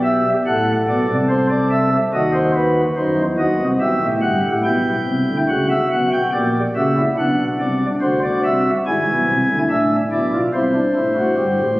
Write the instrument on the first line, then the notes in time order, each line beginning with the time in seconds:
pipe organ
Already playing: B1 B2 G4
0.03 E5
0.46 A1 A2 A4 F#5
0.88 B1 B2 D5
1.08 C2 C3
1.29 C5
1.50 D5
1.71 E5
2.13 D#2 D#3 F#4 D#5
2.34 C5
2.55 B4
2.96 F#2 F#3 D#4 C5
3.17 E2 E3
3.38 D#2 D#3 F#4 D#5
3.59 C2 C3
3.80 B1 B2 G4 E5
4.01 A1 A2
4.21 G1 G2 F#5
4.42 A1 A2
4.63 B1 B2 E4 G5
5.07 C2 C3
5.28 D2 D3
5.49 C#2 C#3 F#4 F#5
5.70 E5
5.91 B1 B2 F#5
6.12 G5
6.33 A#1 A#2 G4 D5
6.75 C#2 C#3 F#4 E5
6.96 E4
7.17 B1 B2 D4 F#5
7.59 C2 C3 D5
8.01 D2 D3 F#4 C5
8.23 D5
8.44 C2 C3 E5
8.86 G#1 G#2 E4 G#5
9.07 B1 B2
9.28 C2 C3
9.49 D2 D3
9.69 A1 A2 D4 E5
10.11 B1 B2 E4 D5
10.33 F4
10.54 C2 C3 E4 C5
10.75 D4
10.96 A1 A2 E4
11.16 F#4
11.37 G1 G2 G4
11.58 A1 A2